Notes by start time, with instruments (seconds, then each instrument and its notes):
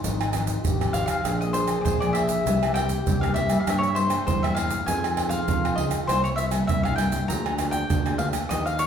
0.03 fingered electric bass G#1, nylon-string guitar G#2 F3 C4 D#4, trombone D#4, pandeiro, shaker, surdo
0.21 pandeiro, tamborim, shaker
0.32 nylon-string guitar F3 C4 D#4, pandeiro, tamborim, shaker, surdo
0.47 pandeiro, shaker, surdo
0.63 fingered electric bass G#1, nylon-string guitar G#2, trombone G4, pandeiro, shaker, surdo
0.80 nylon-string guitar F3 C4 D#4, pandeiro, tamborim, shaker
0.93 fingered electric bass G#1, mandolin F5, pandeiro, shaker, surdo
1.06 mandolin F5, pandeiro, tamborim, shaker, surdo
1.24 fingered electric bass A#1, nylon-string guitar A#2 F3 A#3 D4, trombone G#4, pandeiro, tamborim, shaker, surdo
1.41 mandolin D#5, pandeiro, shaker
1.53 nylon-string guitar F3 A#3 D4, mandolin C5, pandeiro, shaker
1.68 pandeiro, tamborim, shaker
1.81 mandolin C5 D5
1.85 fingered electric bass A#1, nylon-string guitar F3, pandeiro, shaker, surdo
2.00 nylon-string guitar F3 A#3 D4, mandolin D5, pandeiro, tamborim, shaker
2.13 mandolin E5, pandeiro, tamborim
2.29 pandeiro, shaker, surdo
2.45 fingered electric bass C2, nylon-string guitar C3 G3 A#3 E4, trombone G4, pandeiro, shaker, surdo
2.63 pandeiro, tamborim, shaker
2.74 nylon-string guitar G3 A#3 E4, mandolin G5, pandeiro, tamborim, surdo
2.89 pandeiro, shaker, surdo
3.07 fingered electric bass C2, nylon-string guitar G2, pandeiro, shaker, surdo
3.21 nylon-string guitar G3 A#3 E4, mandolin F5, pandeiro, tamborim, shaker
3.34 fingered electric bass C2, mandolin E5, pandeiro, surdo
3.49 nylon-string guitar G3 A#3 E4, pandeiro, tamborim, shaker, surdo
3.60 mandolin F5
3.67 fingered electric bass G2, nylon-string guitar C3 G3 A#3 E4, mandolin E5, pandeiro, tamborim, shaker, surdo
3.78 mandolin C#5
3.83 pandeiro, shaker
3.88 mandolin E5
3.95 nylon-string guitar G3 A#3 E4, mandolin C5, pandeiro
4.10 pandeiro, tamborim, shaker
4.27 fingered electric bass E2, nylon-string guitar G2, mandolin C5, pandeiro, shaker, surdo
4.43 nylon-string guitar G3 A#3 E4, mandolin E5, pandeiro, tamborim, shaker
4.55 mandolin F5, pandeiro, tamborim
4.70 pandeiro, shaker, surdo
4.86 fingered electric bass F2, nylon-string guitar F3 C4 D#4 G#4, trombone F4, mandolin G#5, pandeiro, shaker, surdo
5.04 pandeiro, tamborim, shaker
5.17 pandeiro, tamborim, surdo
5.29 nylon-string guitar C4 D#4 G#4, mandolin F5, pandeiro, shaker, surdo
5.48 fingered electric bass F2, nylon-string guitar C3, pandeiro, shaker, surdo
5.65 pandeiro, tamborim, shaker
5.76 fingered electric bass C#2, nylon-string guitar C4 D#4 G#4, mandolin D#5, pandeiro, surdo
5.91 pandeiro, tamborim, shaker, surdo
6.07 fingered electric bass C2, nylon-string guitar C3 G3 A#3 E4, trombone E4, mandolin C5, pandeiro, tamborim, shaker, surdo
6.24 mandolin C#5, pandeiro, shaker
6.36 mandolin E5, pandeiro, shaker
6.51 nylon-string guitar G3 A#3 E4, pandeiro, tamborim, shaker
6.67 fingered electric bass C2, nylon-string guitar G2, mandolin E5, pandeiro, shaker, surdo
6.83 mandolin F5, pandeiro, tamborim, shaker
6.96 nylon-string guitar G3 A#3 E4, mandolin G5, pandeiro, tamborim, shaker
7.12 pandeiro, shaker, surdo
7.28 fingered electric bass D2, nylon-string guitar D3 A#3 F4 G#4, trombone D4, mandolin A#5, pandeiro, shaker, surdo
7.46 pandeiro, tamborim, shaker
7.59 nylon-string guitar A#3 F4 G#4, pandeiro, tamborim, shaker, surdo
7.71 mandolin G5, pandeiro, shaker, surdo
7.90 fingered electric bass D2, nylon-string guitar D3, pandeiro, shaker, surdo
8.06 nylon-string guitar A#3 F4 G#4, pandeiro, tamborim, shaker
8.18 fingered electric bass D2, mandolin F5, pandeiro, surdo
8.33 pandeiro, tamborim, shaker, surdo
8.49 fingered electric bass D#2, nylon-string guitar D#3 A#3 C#4 G4, trombone D#4, mandolin D#5, pandeiro, tamborim, shaker, surdo
8.66 mandolin F5, pandeiro, shaker
8.79 mandolin C#5, pandeiro, shaker